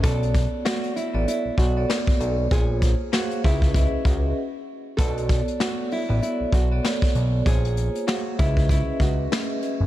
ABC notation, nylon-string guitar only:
X:1
M:4/4
L:1/8
Q:"Swing 16ths" 1/4=97
K:Bdor
V:1 name="Nylon-string guitar"
A2 F E E F3 | G2 F E E F z2 | A2 F E E F3 | G2 F E E F3 |]